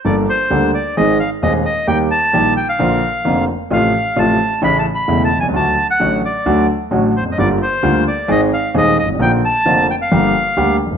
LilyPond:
<<
  \new Staff \with { instrumentName = "Bandoneon" } { \time 4/4 \key g \minor \tempo 4 = 131 d''8 c''4 d''8 ees''8 f''8 ees''8 ees''8 | g''8 a''4 g''16 f''4.~ f''16 r8 | f''4 a''4 \tuplet 3/2 { b''8 a''8 b''8~ b''8 a''8 aes''8 } | a''8. fis''8. d''4 r4 c''16. ees''32 |
d''8 c''4 d''8 ees''8 f''8 ees''8 ees''8 | g''8 a''4 g''16 f''4.~ f''16 r8 | }
  \new Staff \with { instrumentName = "Grand piano" } { \clef bass \time 4/4 \key g \minor <g,, g, g bes d' a'>8 r8 <d, d g bes d' a'>8 r8 <aes,, aes, ees aes c' aes'>8 r8 <ees,, ees, ees aes c' aes'>8 r8 | <ees, ees g bes g'>8 r8 <bes,, bes, ees g bes g'>8 r8 <bes,, bes, d f bes f'>8 r8 <f,, f, d f bes f'>8 r8 | <a,, a, c f a f'>8 r8 <a,, a, c f a f'>8 r8 <a,, a, cis e a e'>8 r8 <e,, e, cis e a e'>8 r32 b,,32 c,32 cis,32 | <d, d fis a fis'>8 r8 <a,, a, d fis a fis'>8 r8 <d, d fis a fis'>8 r8 <a,, a, d fis a fis'>8 r32 e,32 f,32 fis,32 |
<g,, g, d g bes f'>8 r8 <d, d g bes f'>8 r8 <aes,, aes, ees aes c' aes'>8 r8 <ees,, ees, ees aes c' aes'>8 r32 g,,32 aes,,32 a,,32 | <bes,, bes, d f bes f'>8 r8 <f,, f, d f bes f'>8 r8 <g,, g, d g bes g'>8 r8 <d, d g bes g'>8 r32 fis,,32 g,,32 r32 | }
>>